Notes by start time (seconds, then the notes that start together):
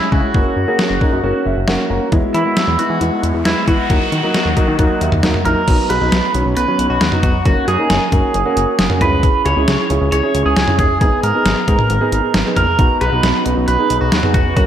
Already playing: E4
0.12 C#3 G#3 C#4 E4 F#4, kick
0.34 F#1 A#3 C#4 F#4, kick
0.56 F#2
0.68 A#3 C#4 G#4
0.79 snare
0.90 F#1
1.01 A#3 C#4 D#4, kick
1.12 F#2
1.23 F#1 A#3 C#4 F#4
1.45 F#1 E5
1.57 F#1
1.68 F#1 A#3 C#4 F#4 F#5, snare
1.90 F#1 A#3 C#4 F#4 A#5
2.12 E2 G#3 B3 E4, kick, closed hi-hat, noise sweep
2.34 E3 E4, closed hi-hat
2.45 G#3 B3 F#4
2.57 snare, closed hi-hat
2.68 E2
2.79 G#3 B3 E4 F#4, closed hi-hat
2.90 E3
3.01 E2 G#3 B3 E4, closed hi-hat
3.23 E2, closed hi-hat
3.34 E2
3.45 E2 G#3 B3 E4, snare, closed hi-hat
3.68 E3 G#3 B3 E4 F#4, kick, closed hi-hat
3.90 D#2 F#3 A#3 D#4, kick, closed hi-hat
4.12 D#3, closed hi-hat
4.23 F#3 A#3 D#4
4.34 snare, closed hi-hat
4.45 D#2
4.57 F#3 A#3 D#4, kick, closed hi-hat
4.68 D#3
4.79 D#2 F#3 A#3 D#4, kick, closed hi-hat
5.01 D#2 E5, closed hi-hat
5.12 D#2, mid tom
5.23 D#2 F#3 A#3 D#4 F#5, snare, closed hi-hat
5.34 mid tom
5.45 A#1 F#3 A#3 D#4 A#4 A#5, closed hi-hat
5.68 B1 F#3 B3 D#4, kick, closed hi-hat, crash
5.90 B1 B4, closed hi-hat, cowbell
6.01 B1 F#3 B3 D#4
6.12 B1, snare, closed hi-hat
6.34 B1 F#3 B3 C#4, closed hi-hat
6.46 B1
6.57 B1 B4, closed hi-hat
6.68 F#3 B3 C#4
6.79 B1, closed hi-hat
6.90 B1 F#4
7.01 D#2, snare, closed hi-hat
7.12 F#3 B3 D#4, mid tom
7.23 B1 F#4, kick, closed hi-hat, mid tom
7.45 F#1 A#3 C#4 F#4, kick, closed hi-hat
7.68 F#2 G#4, closed hi-hat, cowbell
7.79 A#3 C#4 D#4
7.90 F#1, snare, closed hi-hat
8.12 F#2 A#3 C#4 F#4, kick, closed hi-hat
8.34 F#1, closed hi-hat
8.45 A#3 C#4 F#4
8.56 F#1, closed hi-hat
8.79 F#1, snare, closed hi-hat
8.90 A#3 C#4 F#4, mid tom
9.01 C#2 C#4 E4 G#4 B4, closed hi-hat, mid tom
9.23 kick, closed hi-hat
9.45 C#2 C#5, closed hi-hat, cowbell
9.57 C#2 C#4 E4 G#4
9.68 C#2, snare, closed hi-hat
9.90 C#2 C#4 E4 G#4, closed hi-hat
10.01 C#2
10.12 C#2 C#5, closed hi-hat
10.23 C#4 E4 G#4
10.34 C#2, closed hi-hat
10.46 C#2 G#4
10.56 C#2, snare, closed hi-hat
10.68 C#4 E4 G#4, mid tom
10.79 D#2 G#4, kick, closed hi-hat, mid tom
11.01 G#1 B3 D#4 G#4, kick, closed hi-hat
11.23 G#2 A#4, closed hi-hat
11.34 B3 D#4 G#4
11.45 G#1, snare, closed hi-hat
11.68 G#2 B3 D#4 G#4, kick, closed hi-hat
11.79 mid tom
11.90 G#1, closed hi-hat
12.01 B3 D#4 G#4
12.12 G#1, closed hi-hat
12.34 G#1, snare, closed hi-hat
12.46 B3 D#4 G#4
12.56 A#1 A#4, closed hi-hat, mid tom
12.79 B1 B3 C#4 D#4 F#4, kick, closed hi-hat
13.01 B1 B4, closed hi-hat, cowbell
13.12 B1 B3 D#4 F#4
13.23 B1, snare, closed hi-hat
13.46 B1 B3 D#4 F#4, closed hi-hat
13.57 B1
13.68 B1 B4, closed hi-hat
13.79 B3 D#4 G#4
13.90 B1, closed hi-hat
14.01 B1 F#4
14.12 D#2, snare, closed hi-hat
14.23 B3 D#4 G#4, mid tom
14.34 B1 F#4, kick, closed hi-hat, mid tom
14.56 F#1 F#3 A#3 C#4 F#4 G#4 A#4, kick, closed hi-hat